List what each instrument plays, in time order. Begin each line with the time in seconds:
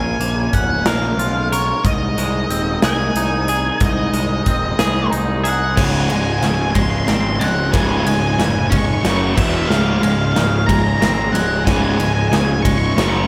Already playing: picked electric bass A#1, clean electric guitar A#2 C#4 A#4, string section C#3 F3 G#3 C#4, lead electric guitar G#5
0.20 picked electric bass A#1, clean electric guitar A#3, closed hi-hat
0.53 picked electric bass C#1, clean electric guitar C#4, lead electric guitar F#5, kick, closed hi-hat
0.85 picked electric bass A#1, clean electric guitar A#4, lead electric guitar F5, snare, closed hi-hat
1.17 picked electric bass B1, clean electric guitar F4, closed hi-hat
1.52 clean electric guitar A#4, lead electric guitar C#5, closed hi-hat
1.82 picked electric bass C2, clean electric guitar G#2, string section C3 D#3 D#4, lead electric guitar D#5, kick, closed hi-hat
2.18 picked electric bass C2, clean electric guitar G#3, closed hi-hat
2.50 picked electric bass D#1, clean electric guitar C4, closed hi-hat
2.82 picked electric bass C2, clean electric guitar G#4, lead electric guitar G#5, snare, closed hi-hat
3.15 picked electric bass C2, clean electric guitar D#4, closed hi-hat
3.48 clean electric guitar G#4, closed hi-hat
3.80 picked electric bass C2, clean electric guitar G#2, lead electric guitar D#5, kick, closed hi-hat
4.13 picked electric bass C2, clean electric guitar G#3, closed hi-hat
4.46 picked electric bass D#1, clean electric guitar C4, kick, closed hi-hat
4.79 picked electric bass C2, clean electric guitar G#4, snare, closed hi-hat
5.11 picked electric bass C2, clean electric guitar D#4, closed hi-hat
5.44 clean electric guitar G#4, lead electric guitar F#5, closed hi-hat
5.76 picked electric bass C#1, distorted electric guitar C#2 G#2 C#3, clean electric guitar C#2, string section C#3 F3 G#3 C4, lead electric guitar G#5, kick, snare, crash
5.84 lead electric guitar G#5
5.92 lead electric guitar G#5
6.00 lead electric guitar G#5
6.09 picked electric bass C#1, distorted electric guitar C#2 G#2, clean electric guitar G#3, lead electric guitar G#5, ride
6.16 lead electric guitar G#5
6.23 lead electric guitar G#5
6.32 lead electric guitar G#5
6.39 picked electric bass C#1, distorted electric guitar C#2, lead electric guitar G#5, snare, ride
6.43 distorted electric guitar G#2, clean electric guitar C#3
6.47 lead electric guitar G#5
6.55 lead electric guitar G#5
6.62 lead electric guitar G#5
6.71 lead electric guitar G#5
6.75 distorted electric guitar C#2 G#2, clean electric guitar G#3, lead electric guitar C6, kick, ride
6.81 lead electric guitar C6
6.90 lead electric guitar C6
6.98 lead electric guitar C6
7.05 picked electric bass G#1, distorted electric guitar C#2 G#2, clean electric guitar C4, lead electric guitar C6, snare, ride
7.13 lead electric guitar C6
7.21 lead electric guitar C6
7.28 lead electric guitar C6
7.36 lead electric guitar F#5 C6
7.40 picked electric bass C#1, distorted electric guitar C#2 G#2, clean electric guitar G#3, ride
7.72 picked electric bass C#1, distorted electric guitar C#2 G#2 C#3, clean electric guitar C#2, lead electric guitar G#5, kick, snare, ride
7.80 lead electric guitar G#5
7.87 lead electric guitar G#5
7.97 lead electric guitar G#5
8.03 picked electric bass C#1, distorted electric guitar C#2 G#2, clean electric guitar G#3, lead electric guitar G#5, ride
8.11 lead electric guitar G#5
8.20 lead electric guitar G#5
8.27 lead electric guitar G#5
8.34 lead electric guitar G#5
8.39 picked electric bass F1, distorted electric guitar C#2 G#2, clean electric guitar C#3, snare, ride
8.43 lead electric guitar G#5
8.51 lead electric guitar G#5
8.59 lead electric guitar G#5
8.67 distorted electric guitar C#2, lead electric guitar G#5 C#6
8.71 distorted electric guitar G#2, clean electric guitar G#3, kick, ride
8.79 lead electric guitar C#6
8.85 lead electric guitar C#6
8.94 lead electric guitar C#6
9.02 picked electric bass F#1, distorted electric guitar F#2 C#3 F#3, clean electric guitar F#2, string section F#3 F#4, lead electric guitar C#6, snare, ride
9.06 string section C#5, lead electric guitar C#6
9.17 lead electric guitar C#6
9.24 lead electric guitar C#6
9.36 picked electric bass E1, distorted electric guitar E2 B2 E3, clean electric guitar E2, string section E3 B3 B4 E5, lead electric guitar E5, kick, crash
9.67 distorted electric guitar C#2 G#2 C#3, clean electric guitar C#2, string section F3 G#3, lead electric guitar F5, snare
9.71 picked electric bass C#1, string section G#4, lead electric guitar F5
9.82 lead electric guitar F5
9.88 lead electric guitar F5
9.96 lead electric guitar F5
10.02 picked electric bass C#1, distorted electric guitar C#2 G#2, clean electric guitar G#3, lead electric guitar F5, ride
10.10 lead electric guitar F5
10.19 lead electric guitar F5
10.25 lead electric guitar F5
10.32 distorted electric guitar C#2 G#2, lead electric guitar F5
10.36 picked electric bass C#1, clean electric guitar C#3, snare, ride
10.41 lead electric guitar F5
10.48 lead electric guitar F5
10.56 lead electric guitar F5
10.67 distorted electric guitar C#2 G#2, clean electric guitar G#3, lead electric guitar A#5, kick, ride
10.73 lead electric guitar A#5
10.82 lead electric guitar A#5
10.89 lead electric guitar A#5
10.98 distorted electric guitar C#2 G#2, clean electric guitar C4, lead electric guitar A#5
11.02 picked electric bass G#1, lead electric guitar A#5, snare, ride
11.13 lead electric guitar A#5
11.22 lead electric guitar A#5
11.32 picked electric bass C#1, distorted electric guitar C#2 G#2, clean electric guitar G#3, lead electric guitar F#5, ride
11.65 picked electric bass C#1, clean electric guitar C#2, distorted electric guitar C#2 G#2 C#3, lead electric guitar G#5, kick, snare, ride
11.72 lead electric guitar G#5
11.82 lead electric guitar G#5
11.90 lead electric guitar G#5
11.97 picked electric bass C#1, distorted electric guitar C#2 G#2, clean electric guitar G#3, lead electric guitar G#5, ride
12.05 lead electric guitar G#5
12.13 lead electric guitar G#5
12.21 lead electric guitar G#5
12.28 distorted electric guitar C#2 G#2, clean electric guitar C#3, lead electric guitar G#5
12.33 picked electric bass C#1, lead electric guitar G#5, snare, ride
12.45 lead electric guitar G#5
12.53 lead electric guitar G#5
12.62 distorted electric guitar C#2 G#2, clean electric guitar G#3, lead electric guitar C#6, kick, ride
12.70 lead electric guitar C#6
12.78 lead electric guitar C#6
12.86 lead electric guitar C#6
12.93 lead electric guitar C#6
12.97 picked electric bass F#1, clean electric guitar F#2, distorted electric guitar F#2 C#3 F#3, string section C#3 F#3 F#4 C#5, snare, ride
13.02 lead electric guitar C#6
13.09 lead electric guitar C#6
13.17 lead electric guitar C#6